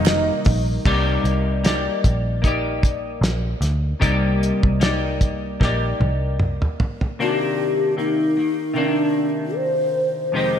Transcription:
Already playing: picked electric bass F1, clean electric guitar C3 G3 A#3 D#4 G4 D#5, analog synth pad D#3 A#3 D#4, ocarina D#5
0.06 snare, clap, closed hi-hat
0.45 picked electric bass A#1, kick, open hi-hat
0.85 picked electric bass C2, clean electric guitar C3 G3 A#3 D#4 G4 D5, kick, crash
1.24 picked electric bass C2, closed hi-hat
1.64 clean electric guitar A#3 D#4 G4 D5, snare, closed hi-hat
2.04 picked electric bass A#1, kick, closed hi-hat
2.42 clean electric guitar A#3 D#4, kick, closed hi-hat
2.46 clean electric guitar G4 D5
2.83 kick, closed hi-hat
3.21 picked electric bass A#1, snare, closed hi-hat
3.61 picked electric bass D2, snare, closed hi-hat
4.00 picked electric bass C2, clean electric guitar C3 G3 A#3 D#4 G4 D5, kick, closed hi-hat
4.43 closed hi-hat
4.63 picked electric bass C2, kick
4.80 clean electric guitar A#3 D#4 G4 D5, snare, closed hi-hat
5.21 kick, closed hi-hat
5.60 picked electric bass A#1, clean electric guitar A#3 D#4 G4, kick, snare
5.65 clean electric guitar D5
6.00 picked electric bass C2, high tom
6.40 mid tom
6.62 mid tom
6.80 floor tom
7.01 floor tom
7.19 clean electric guitar C3 D#3 A#3 D4, ocarina F#4
7.34 ocarina G4
7.97 clean electric guitar C3 D#3 A#3, ocarina D#4
8.37 clean electric guitar D#3 A#3
8.73 clean electric guitar C3 D#3 A#3 D4, ocarina C#4
8.89 ocarina D4
9.56 ocarina C5
10.32 clean electric guitar F2 C3 D#3 G#3 D#4, ocarina C5
10.36 clean electric guitar G4

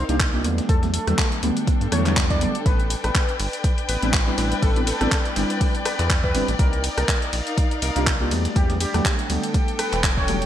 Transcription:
Already playing: string section D#4 A#4 D5 F5, soft synth lead C5
0.09 analog synth bass C2, synth stab A#3 D4 D#4 F4 G4, snare, closed hi-hat
0.20 kick, snare, clap, closed hi-hat
0.33 synth stab A#3 D4 D#4 F4 G4
0.44 analog synth bass E2, synth stab D3 F#3 G3 A3 B3, string section D4, closed hi-hat, open hi-hat
0.58 snare, closed hi-hat
0.69 analog synth bass E2, soft synth lead A4, kick, closed hi-hat
0.83 synth stab D3 F#3 G3 A3 B3, snare, closed hi-hat
0.94 soft synth lead A4, closed hi-hat, open hi-hat
1.00 string section A4
1.07 analog synth bass E2, synth stab D3 F#3 G3 A3 B3, cross-stick, snare, closed hi-hat
1.18 kick, snare, clap, closed hi-hat
1.30 string section G5, closed hi-hat
1.43 analog synth bass D2, synth stab D3 F#3 G3 A3 B3, closed hi-hat, open hi-hat
1.57 closed hi-hat
1.67 kick, closed hi-hat
1.81 analog synth bass G2, closed hi-hat
1.92 analog synth bass E2, synth stab D3 F#3 G3 A3 B3, soft synth lead C#5, cross-stick, closed hi-hat, open hi-hat
2.06 synth stab D3 F#3 G3 A3 B3, snare, clap, closed hi-hat
2.16 synth stab D3 F#3 G3 A3 B3, kick, snare, clap, closed hi-hat
2.30 soft synth lead D5, kick, snare, closed hi-hat
2.41 synth stab D3 F#3 G3 A3 B3, closed hi-hat, open hi-hat
2.55 closed hi-hat
2.66 analog synth bass A1, soft synth lead B4, kick, closed hi-hat, ride
2.79 string section B4, closed hi-hat
2.90 closed hi-hat, open hi-hat, ride
3.04 analog synth bass A1, soft synth lead B4, cross-stick, closed hi-hat
3.12 string section D5, kick, snare, clap, closed hi-hat
3.29 closed hi-hat
3.40 analog synth bass G1, open hi-hat, ride
3.53 closed hi-hat
3.64 kick, closed hi-hat, ride
3.78 closed hi-hat
3.89 analog synth bass A1, soft synth lead B4, closed hi-hat, open hi-hat, ride
4.02 analog synth bass A1, synth stab G3 B3 C4 D4 E4, snare, closed hi-hat
4.13 kick, snare, clap, closed hi-hat, ride
4.27 synth stab G3 B3 C4 D4 E4
4.38 analog synth bass A1, synth stab G3 B3 C4 D4 E4, snare, closed hi-hat, open hi-hat, ride
4.52 closed hi-hat
4.62 analog synth bass A1, soft synth lead A4, kick, closed hi-hat, open hi-hat, ride
4.76 synth stab G3 B3 C4 D4 E4, closed hi-hat
4.87 soft synth lead A4, closed hi-hat, open hi-hat, ride
5.01 analog synth bass A1, synth stab G3 B3 C4 D4 E4, cross-stick, closed hi-hat
5.12 kick, snare, clap, closed hi-hat
5.25 closed hi-hat
5.36 analog synth bass G1, synth stab G3 B3 C4 D4 E4, snare, closed hi-hat, open hi-hat, ride
5.50 closed hi-hat
5.61 kick, closed hi-hat, open hi-hat, ride
5.75 closed hi-hat
5.85 soft synth lead B4, cross-stick, closed hi-hat, open hi-hat, ride
5.99 analog synth bass E2, clap, closed hi-hat
6.10 kick, snare, clap, closed hi-hat
6.24 soft synth lead B4, kick, snare
6.34 analog synth bass G1, synth stab G3 B3 C4 D4 E4, closed hi-hat, open hi-hat, ride
6.48 analog synth bass A1, closed hi-hat
6.59 analog synth bass C2, string section D#4, soft synth lead A#4, kick, closed hi-hat, ride
6.73 closed hi-hat
6.82 string section A#4, closed hi-hat, open hi-hat, ride
6.98 analog synth bass C2, soft synth lead A#4, cross-stick, closed hi-hat
7.08 kick, snare, clap, closed hi-hat, ride
7.22 closed hi-hat
7.33 analog synth bass A#1, open hi-hat, ride
7.37 string section F5
7.47 closed hi-hat
7.58 kick, closed hi-hat, ride
7.71 closed hi-hat
7.82 analog synth bass C2, soft synth lead A#4, closed hi-hat, open hi-hat, ride
7.96 analog synth bass C2, synth stab A#3 D4 D#4 F4 G4, snare, closed hi-hat
8.07 kick, snare, clap, closed hi-hat
8.20 synth stab A#3 D4 D#4 F4 G4
8.31 analog synth bass E2, synth stab D3 F#3 G3 A3 B3, string section D4, closed hi-hat, open hi-hat, ride
8.45 snare, closed hi-hat
8.56 analog synth bass E2, soft synth lead G4, kick, closed hi-hat, ride
8.70 synth stab D3 F#3 G3 A3 B3, snare, closed hi-hat
8.81 soft synth lead G4, closed hi-hat, open hi-hat, ride
8.94 analog synth bass E2, synth stab D3 F#3 G3 A3 B3, cross-stick, snare, closed hi-hat
9.05 kick, snare, clap, closed hi-hat, ride
9.17 string section A4, closed hi-hat
9.29 analog synth bass D2, synth stab D3 F#3 G3 A3 B3, string section G5, closed hi-hat, open hi-hat, ride
9.43 closed hi-hat
9.54 kick, closed hi-hat, ride
9.68 closed hi-hat
9.79 soft synth lead B4, cross-stick, closed hi-hat, open hi-hat, ride
9.93 analog synth bass E1, snare, clap, closed hi-hat
10.03 kick, snare, clap, closed hi-hat, ride
10.17 soft synth lead C#5, kick, snare
10.28 synth stab D3 F#3 G3 A3 B3, closed hi-hat, open hi-hat, ride
10.42 closed hi-hat

